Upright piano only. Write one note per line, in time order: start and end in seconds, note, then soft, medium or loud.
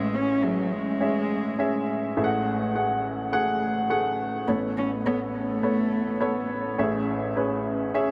0.00 1.83 A1 medium
0.00 1.83 A2 medium
0.00 0.30 C#4 medium
0.00 0.30 G#4 medium
0.00 0.31 E5 medium
0.42 0.92 C#4 soft
0.42 0.92 G#4 soft
0.42 0.93 E5 medium
1.01 1.50 C#4 medium
1.01 1.50 G#4 medium
1.01 1.51 E5 medium
1.59 2.08 C#4 medium
1.59 2.08 G#4 medium
1.59 2.09 E5 medium
2.17 4.44 A1 medium
2.17 4.44 A2 medium
2.17 2.66 A3 medium
2.17 2.66 G#4 medium
2.17 2.23 E5 medium
2.24 2.70 F#5 medium
2.75 3.24 A3 soft
2.75 3.24 G#4 soft
2.75 3.24 F#5 medium
3.32 3.82 A3 medium
3.32 3.82 G#4 medium
3.32 3.82 F#5 medium
3.90 4.39 A3 medium
3.90 4.39 G#4 medium
3.90 4.39 F#5 medium
4.48 6.75 A1 soft
4.48 6.75 A2 soft
4.48 4.97 B3 medium
4.48 4.97 A4 soft
4.48 4.97 C#5 medium
5.06 5.55 B3 medium
5.06 5.55 A4 soft
5.06 5.55 C#5 medium
5.63 6.12 B3 medium
5.63 6.13 A4 soft
5.63 6.13 C#5 medium
6.20 6.70 B3 medium
6.20 6.70 A4 medium
6.20 6.70 C#5 medium
6.78 8.11 A1 medium
6.78 8.11 A2 medium
6.78 7.28 C#4 medium
6.78 7.28 G#4 medium
6.78 7.28 E5 medium
7.36 7.85 C#4 medium
7.36 7.85 G#4 medium
7.36 7.86 B4 medium
7.94 8.11 C#4 medium
7.94 8.11 G#4 medium
7.94 8.11 E5 medium